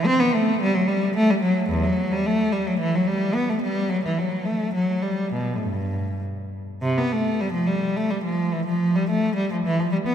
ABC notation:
X:1
M:3/4
L:1/16
Q:1/4=108
K:G
V:1 name="Cello" clef=bass
C B, A,2 G, F, G,2 A, G, F,2 | E,, F,2 G, A,2 G, F, E, F, G,2 | B, A, G,2 F, E, F,2 A,2 F,2 | G,2 B,,3/2 A,,/2 G,,4 z4 |
[K:Gmix] C, B, A,2 G, F, G,2 A, G, F,2 | E, F,2 G, A,2 G, F, E, F, G, B, |]